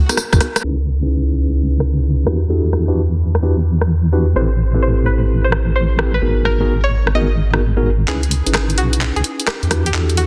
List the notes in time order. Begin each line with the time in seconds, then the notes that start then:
Already playing: F#4
0.09 B3 D#4 F#4 G#4 A#4, cross-stick, closed hi-hat, tambourine
0.17 cross-stick, tambourine
0.33 G#1 B3 D#4 F#4 G#4 A#4, kick, cross-stick, closed hi-hat, tambourine
0.41 cross-stick, open hi-hat
0.56 cross-stick, closed hi-hat, tambourine
0.64 C#2 C#4 D#4 E4 G#4 B4
1.02 C#4 D#4 E4 G#4 B4
1.80 cross-stick
2.26 E2 D4 E4 F#4 G4 B4, cross-stick
2.50 D4 E4 F#4 G4 A4
2.73 cross-stick
2.88 D4 E4 F#4 G4 B4
3.35 cross-stick
3.43 D4 E4 F#4 G4 B4
3.81 cross-stick
4.13 D4 E4 F#4 G4 B4
4.36 A1 C4 E4 G4 A4 B4 C5
4.74 C4 E4 G4 A4 B4
4.82 C5
5.06 B4
5.44 C5
5.52 cross-stick
5.76 C5
5.99 C4 E4 G4 A4 B4, cross-stick
6.14 B4
6.22 G#1 B3 D#4 F#4 G#4 A#4
6.45 A#4, cross-stick
6.60 B3 D#4 F#4 G#4 A#4
6.84 C#5
7.07 cross-stick
7.15 B3 D#4 F#4 G#4 A#4 D#5
7.54 B3 D#4 F#4 G#4 A#4, cross-stick
7.77 B3 D#4 F#4 G#4 A#4
8.08 C#2 C#4 D#4 E4 G#4 B4, clap
8.23 closed hi-hat
8.31 open hi-hat
8.46 G#1 C#4 D#4 E4 G#4 B4, closed hi-hat
8.54 G#4, cross-stick, clap
8.70 closed hi-hat
8.78 B1 F#4, open hi-hat
8.93 closed hi-hat
9.01 clap
9.16 C#2 G#4, closed hi-hat
9.24 open hi-hat
9.40 closed hi-hat
9.47 G4, cross-stick, clap
9.63 E2, closed hi-hat
9.71 D4 E4 F#4 G4 B4, cross-stick, open hi-hat
9.86 G4, closed hi-hat
9.94 E2 D4 E4 F#4 G4 A4, clap
10.10 closed hi-hat
10.17 F#4, open hi-hat